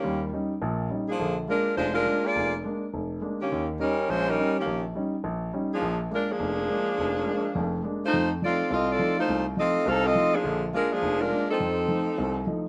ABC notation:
X:1
M:4/4
L:1/8
Q:"Swing" 1/4=208
K:Bbmix
V:1 name="Saxophone section"
[E,B,_DG] z6 [F,B,=DA]- | [F,B,DA] z [A,DFB]2 [A,DFc] [A,DFB]2 [B,FAd]- | [B,FAd] z6 [E,B,_DG]- | [E,B,_DG] z [G,DEB]2 [A,DFc] [G,DEB]2 [E,B,DG]- |
[E,B,_DG] z6 [F,B,=DA]- | [F,B,DA] z [A,DFB] [F,B,DA]4- [F,B,DA]- | [F,B,DA]6 z [=A,EFc]- | [=A,EFc] z [CF=Ad]2 [CFAe] [CFAd]2 [A,EFc]- |
[=A,EFc] z [CF=Ae]2 [EAcf] [CFAe]2 [F,B,D_A]- | [F,B,DA] z [A,DFB] [F,B,DA]2 [A,DFB]2 [F,CE=A]- | [F,CE=A]6 z2 |]
V:2 name="Grand piano" clef=bass
[E,,G,]2 [G,_DE] z [B,,,B,,]2 [G,DE] z | [B,,,D,]2 [A,B,D] z F,,,2 [A,B,D] z | F,,,2 [A,B,D] z F,,,2 [A,B,D] z | E,,2 [G,_DE] z B,,,2 [G,DE] z |
B,,,2 [G,_DE] z B,,,2 [G,DE] z | B,,,2 [A,B,D] z F,,,2 [A,B,D] z | F,,,2 [A,B,D] z [F,,,F,,]2 [A,B,D] z | F,,2 [F,=A,E] z C,,2 [F,A,E] z |
C,,2 [F,=A,E] z [C,,C,]2 [F,A,E] z | [B,,,D,]2 [A,B,D] z F,,,2 [A,B,D] z | F,,2 [F,=A,E] z C,,2 [F,A,E] z |]